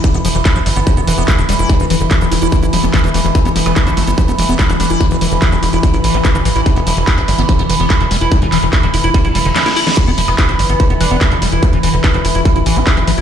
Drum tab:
CC |----------------|----------------|----------------|----------------|
HH |xxo-xxoxxxoxxxox|xxo-xxoxxxoxxxox|xxoxxxoxxxo-xxox|xxoxxxoxxxoxxxox|
CP |----x-------x---|----x-------x---|----x-------x---|----x-------x---|
SD |----------------|----------------|----------------|----------------|
BD |o---o---o---o---|o---o---o---o---|o---o---o---o---|o---o---o---o---|

CC |----------------|----------------|x---------------|----------------|
HH |xxo-xxoxxxoxxxox|xxoxxxoxxxoxxxox|xxoxxxoxxxoxxxox|xxoxxxoxxxoxxxox|
CP |----x-------x---|--x-x-------x---|----x-------x---|----x-------x---|
SD |----------------|------------oo-o|----------------|----------------|
BD |o---o---o---o---|o---o---o-------|o---o---o---o---|o---o---o---o---|